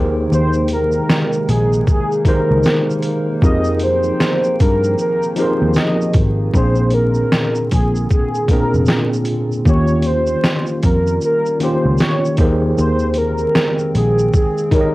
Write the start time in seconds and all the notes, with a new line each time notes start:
Already playing: D#2 C3 D#3 G#3 A#3 D#4 G4 G#4 A#4 C5 G5
0.32 D#2 C5, shaker
0.53 shaker
0.68 closed hi-hat, shaker
0.73 A#4
0.92 shaker
1.09 snare, shaker
1.32 shaker
1.48 A#1 G#4 A#4, closed hi-hat, shaker
1.73 shaker
1.87 G#4, kick, shaker
2.12 shaker
2.25 D#3 D#4 G4 G#4 A#4 C5, kick, closed hi-hat, shaker
2.51 C#2
2.63 snare, shaker
2.90 shaker
3.02 closed hi-hat, shaker
3.42 F2 D#3 F3 C4 D#4 G4 G#4 A#4 D#5 G5, kick, shaker
3.64 shaker
3.80 C5, closed hi-hat, shaker
4.03 shaker
4.20 snare, shaker
4.44 shaker
4.60 G2 A#4, kick, closed hi-hat, shaker
4.84 shaker
4.98 A#4, shaker
5.23 shaker
5.36 F3 C4 D#4 G4 G#4 A#4 C5, closed hi-hat, shaker
5.62 D#2
5.74 D#5, snare, shaker
6.01 shaker
6.13 G#1, kick, closed hi-hat, shaker
6.53 A#1 A#2 D3 A#3 C4 D4 F4 G#4 C5, kick, shaker
6.75 shaker
6.90 A#4, closed hi-hat, shaker
7.14 shaker
7.32 snare, shaker
7.55 shaker
7.71 A#1 G#4, kick, closed hi-hat, shaker
7.95 shaker
8.10 G#4, kick, shaker
8.34 shaker
8.48 A#2 A#3 C4 D4 G#4 A#4, kick, closed hi-hat, shaker
8.74 F1, shaker
8.86 snare, shaker
9.13 shaker
9.25 closed hi-hat, shaker
9.52 shaker
9.65 D#2 D#3 G3 A#3 C#4 F4 G4 C#5, kick, shaker
9.87 shaker
10.02 closed hi-hat, shaker
10.07 C5
10.27 shaker
10.44 snare, shaker
10.66 shaker
10.83 F2 A#4, kick, closed hi-hat, shaker
11.07 shaker
11.21 A#4, shaker
11.46 shaker
11.60 D#3 A#3 C#4 F4 G4 C5, closed hi-hat, shaker
11.85 C#2
11.98 C#5, snare, shaker
12.25 shaker
12.37 D#2 D#3 G#3 A#3 C4 D#4 G4 G#4 A#4 C5 G5, kick, closed hi-hat, shaker
12.78 D#2 C5, shaker
12.99 shaker
13.14 A#4, closed hi-hat, shaker
13.38 shaker
13.55 snare, shaker
13.79 shaker
13.95 A#1 G#4, closed hi-hat, shaker
14.19 shaker
14.33 G#4, kick, shaker
14.58 shaker
14.71 D#3 D#4 G4 G#4 A#4 C#5, kick, closed hi-hat, shaker
14.81 D#5